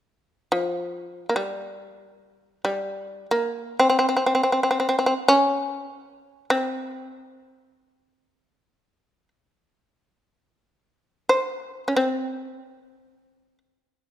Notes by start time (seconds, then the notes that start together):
0.52 F3
1.29 A#3
1.36 G3
2.65 G3
3.31 A#3
3.80 C4
3.90 C4
3.99 C4
4.09 C4
4.17 C4
4.26 C4
4.35 C4
4.43 C4
4.52 C4
4.63 C4
4.71 C4
4.80 C4
4.89 C4
4.99 C4
5.06 C4
5.28 C#4
6.50 C4
11.29 C5
11.88 C#4
11.96 C4